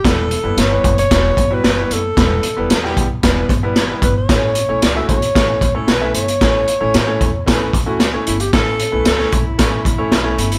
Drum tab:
HH |x-x-x-xxx-x-x-x-|x-x-x-x-x-x-x-x-|x-x-x-xxx-x-x-xx|x-x-x-x-x-x-x-xx|
SD |o---o---o---o---|o---oo--o---o---|o---o---o---o---|o---o---o---o---|
BD |o-----o-o-o-----|o-----o-o-o---o-|o-----o-o-o-----|o-----o-o-o-----|

HH |x-x-x-x-x-x-x-xx|
SD |o---oo--o---o---|
BD |o-----o-o-o-----|